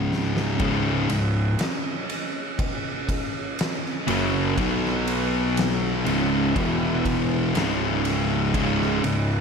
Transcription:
Already playing: C#1 C#2 G#2 C#3 C#4 G#4 D#5
0.13 snare
0.37 snare
0.59 C#1 C#2 G#2 C#3 C#4 G#4 D#5, kick, ride
1.09 C#1 C#2 G#2, ride
1.59 snare, ride
2.10 ride
2.59 kick, ride
3.09 kick, ride
3.59 snare, ride
3.86 snare
4.08 F#1 F#2 C#3 F#3, ride
4.56 B1 B2 F#3 B3 F#4 C#5, kick, ride
4.85 snare
5.07 ride
5.57 snare, ride
6.04 C#1 C#2 G#2 C#3 C#4 G#4 D#5, ride
6.56 E1 E2 B2 E3 E4 B4 F#5, kick, ride
7.05 kick, ride
7.54 C#1 C#2 G#2 C#3 C#4 G#4 D#5, snare, ride
8.05 ride
8.54 C#1 C#2 G#2 C#3, kick, ride
8.82 snare
9.04 C#1 C#2 G#2, ride

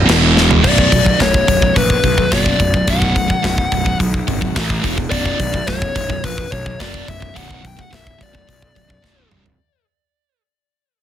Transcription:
0.06 E1 E2 B2 E3, snare, crash
0.37 snare
0.51 floor tom
0.62 B0 B1 F#2 B2 D5, kick, crash
0.78 kick
0.91 B1 F#2, kick, open hi-hat
1.04 B1 F#2, kick
1.19 B0 B1 F#2 C#5, kick, snare, open hi-hat
1.34 kick
1.47 B0 B1 F#2, kick, open hi-hat
1.61 B1 F#2, kick
1.75 A#1 B1 F#2 B4, kick, open hi-hat
1.90 kick
2.03 B1 F#2, kick, open hi-hat
2.17 B1 F#2, kick
2.31 F#1 B1 F#2 B2 D5, kick, snare, open hi-hat
2.46 kick
2.59 B0 B1 F#2, kick, open hi-hat
2.74 B1 F#2, kick
2.87 B0 B1 F#2 B2 F#5, kick, open hi-hat
3.02 kick
3.16 B1 F#2, kick, open hi-hat
3.28 B1 F#2, kick
3.43 B0 B1 F#2, kick, snare, open hi-hat
3.58 kick
3.72 B0 B1 F#2, kick, open hi-hat
3.85 B1 F#2, kick
3.99 B1 F#2, kick, open hi-hat
4.14 kick
4.27 G#1 B1 F#2, kick, open hi-hat
4.41 B1 F#2, kick
4.55 A1 A2 E3 A3, kick, snare, open hi-hat
4.70 kick
4.83 E1 E2 B2 E3, kick, open hi-hat
4.97 E2 B2, kick
5.10 B0 B1 F#2 B2 D5, kick, open hi-hat
5.26 kick
5.39 B1 F#2, kick, open hi-hat
5.53 B1 F#2, kick
5.67 B0 B1 F#2 C#5, kick, snare, open hi-hat
5.82 kick
5.96 B0 B1 F#2, kick, open hi-hat
6.09 B1 F#2, kick
6.24 A#1 B1 F#2 B4, kick, open hi-hat
6.38 kick
6.52 B1 F#2 C#5, kick, open hi-hat
6.66 B1 F#2, kick
6.80 F#1 B1 F#2 B2 D5, kick, snare, open hi-hat
6.94 kick
7.07 B0 B1 F#2 E5, kick, open hi-hat
7.20 B1 F#2, kick
7.34 B0 B1 F#2 B2 F#5, kick, open hi-hat
7.51 kick
7.63 B1 F#2, kick, open hi-hat
7.67 G5
7.77 B1 F#2, kick
7.81 F#5
7.91 B0 B1 F#2 E5, kick, snare, open hi-hat
8.07 kick
8.18 B0 B1 F#2, kick, open hi-hat
8.23 D5
8.33 B1 F#2, kick
8.47 B1 F#2, kick, open hi-hat
8.62 kick
8.75 B0 B1 F#2, kick, open hi-hat
8.89 B1 F#2, kick
9.02 B0 B1 F#2 B2, kick, snare
9.30 C1 C2 G2 C3, mid tom
9.45 C2 G2, floor tom

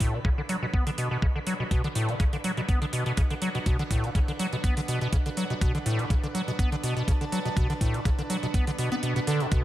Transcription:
Already playing: D4 B4 B5
0.00 A2, kick, open hi-hat
0.14 B2
0.25 C#3, kick
0.38 D3
0.49 F#3, open hi-hat
0.62 B2
0.74 B3, kick
0.87 D3, open hi-hat
0.98 B2, open hi-hat
1.11 B2
1.22 C#3, kick
1.36 D3
1.47 F#3, open hi-hat
1.60 B2
1.71 B2, kick, closed hi-hat
1.84 D3, closed hi-hat
1.95 A2, open hi-hat
2.09 B2, closed hi-hat
2.20 C#3, kick, closed hi-hat
2.33 D3, closed hi-hat
2.44 F#3, open hi-hat
2.57 B2 F#5, closed hi-hat
2.69 B3, kick, closed hi-hat
2.82 D3, closed hi-hat
2.93 B2, open hi-hat
3.06 B2, closed hi-hat
3.17 C#3, kick, closed hi-hat
3.30 D3, closed hi-hat
3.42 F#3, open hi-hat
3.55 B2, closed hi-hat
3.66 B2, kick, closed hi-hat
3.79 D3, closed hi-hat
3.91 A2, kick, open hi-hat
4.04 B2, closed hi-hat
4.15 C#3, kick, closed hi-hat
4.28 D3, closed hi-hat
4.39 F#3, open hi-hat
4.53 B2, closed hi-hat
4.64 B3, kick, closed hi-hat
4.77 D3, open hi-hat
4.88 B2, open hi-hat
5.01 B2, closed hi-hat
5.13 C#3, kick, closed hi-hat
5.26 D3, closed hi-hat
5.37 F#3, open hi-hat
5.50 B2, closed hi-hat
5.61 B2, kick, closed hi-hat
5.75 D3, closed hi-hat
5.86 A2, open hi-hat
5.99 B2, closed hi-hat
6.10 C#3, kick, closed hi-hat
6.23 D3, closed hi-hat
6.35 F#3, open hi-hat
6.48 B2 A5, closed hi-hat
6.59 B3, kick, closed hi-hat
6.72 D3, closed hi-hat
6.83 B2, open hi-hat
6.97 B2, closed hi-hat
7.08 C#3, kick, closed hi-hat
7.21 D3, closed hi-hat
7.32 F#3, open hi-hat
7.45 B2, closed hi-hat
7.57 B2, kick, closed hi-hat
7.70 D3, closed hi-hat
7.81 A2, kick, open hi-hat
7.94 B2, closed hi-hat
8.05 C#3, kick, closed hi-hat
8.19 D3, closed hi-hat
8.30 F#3, open hi-hat
8.43 B2, closed hi-hat
8.54 B3, kick, closed hi-hat
8.67 D3, open hi-hat
8.78 B2, open hi-hat
8.92 B3, closed hi-hat
9.03 B2, closed hi-hat
9.16 B2, closed hi-hat
9.27 D3, open hi-hat
9.40 B2, closed hi-hat
9.52 B2, kick, closed hi-hat
9.59 E5

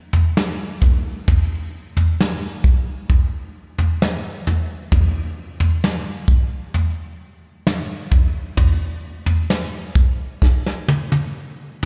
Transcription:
0.13 floor tom
0.37 snare
0.82 kick, floor tom
1.28 kick, floor tom
1.97 floor tom
2.21 snare
2.64 kick
3.10 kick, floor tom
3.78 floor tom
4.02 snare
4.47 floor tom
4.92 kick, floor tom
5.60 floor tom
5.84 snare
6.28 kick
6.74 floor tom
7.67 snare
8.11 kick, floor tom
8.57 kick, floor tom
9.26 floor tom
9.50 snare
9.95 kick
10.42 kick, snare
10.66 snare
10.88 high tom
11.12 high tom

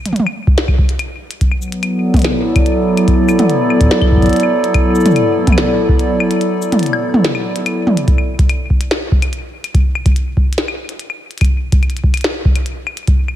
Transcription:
0.06 closed hi-hat, mid tom
0.13 closed hi-hat, mid tom
0.20 mid tom
0.27 claves
0.47 kick
0.58 snare, closed hi-hat
0.68 kick, claves
0.79 kick
0.89 closed hi-hat
0.99 closed hi-hat, claves
1.31 closed hi-hat
1.41 F#3, kick, closed hi-hat
1.45 B3
1.52 claves
1.62 shaker
1.72 closed hi-hat
1.80 E4, closed hi-hat, claves
1.86 A4
1.93 D5
2.14 kick, closed hi-hat, mid tom
2.17 closed hi-hat
2.19 closed hi-hat
2.22 snare, closed hi-hat
2.24 closed hi-hat, claves
2.56 kick, closed hi-hat, claves
2.66 closed hi-hat
2.97 closed hi-hat, claves
3.08 kick, closed hi-hat
3.29 claves, shaker
3.39 closed hi-hat, mid tom
3.50 closed hi-hat
3.70 claves
3.81 kick, closed hi-hat
3.83 kick
3.86 kick
3.89 kick, snare, closed hi-hat
4.02 kick, claves
4.12 kick
4.17 kick
4.22 kick, closed hi-hat
4.26 kick, closed hi-hat
4.29 closed hi-hat
4.33 closed hi-hat
4.36 closed hi-hat
4.40 closed hi-hat, claves
4.64 closed hi-hat
4.74 kick, closed hi-hat, claves
4.95 shaker
5.00 shaker
5.06 closed hi-hat, mid tom, shaker
5.11 shaker
5.16 closed hi-hat, claves
5.47 kick, closed hi-hat, mid tom
5.52 claves
5.58 snare, closed hi-hat
5.89 kick
5.99 closed hi-hat
6.20 claves
6.31 closed hi-hat
6.41 closed hi-hat
6.62 shaker
6.72 closed hi-hat, mid tom
6.79 closed hi-hat
6.83 closed hi-hat
6.86 closed hi-hat
6.93 claves
7.14 mid tom
7.25 snare, closed hi-hat
7.35 claves
7.56 closed hi-hat
7.66 closed hi-hat, claves
7.87 mid tom
7.97 closed hi-hat
8.08 kick, closed hi-hat
8.18 claves
8.39 kick, closed hi-hat
8.49 closed hi-hat, claves
8.70 kick
8.81 closed hi-hat
8.91 snare, closed hi-hat, claves
9.12 kick
9.22 closed hi-hat, claves
9.33 closed hi-hat
9.64 closed hi-hat, claves
9.74 kick, closed hi-hat
9.95 claves
10.06 kick, closed hi-hat
10.16 closed hi-hat
10.37 kick
10.53 closed hi-hat
10.58 snare, closed hi-hat
10.68 claves
10.89 closed hi-hat
10.99 closed hi-hat
11.10 claves
11.31 closed hi-hat
11.38 closed hi-hat
11.41 kick, closed hi-hat, claves
11.45 closed hi-hat
11.72 kick, closed hi-hat
11.83 closed hi-hat, claves
11.90 closed hi-hat
11.97 closed hi-hat
12.04 kick
12.14 closed hi-hat, claves
12.17 closed hi-hat
12.21 snare, closed hi-hat
12.24 closed hi-hat
12.45 kick
12.56 closed hi-hat, claves
12.66 closed hi-hat
12.87 claves
12.97 closed hi-hat
13.08 kick, closed hi-hat
13.28 claves

